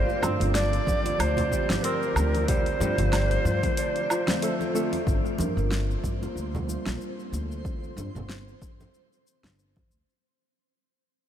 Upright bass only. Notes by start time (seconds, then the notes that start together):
0.22 G2
0.40 G1
0.87 G2
1.19 D2
1.69 G1
2.16 D2
2.80 G2
2.98 G1
3.45 G2
5.07 G1
5.39 G2
5.57 G1
6.04 G2
6.36 D2
6.86 A#1
7.32 D2
7.97 G2
8.15 G1
8.62 G2
9.44 G1
9.90 D2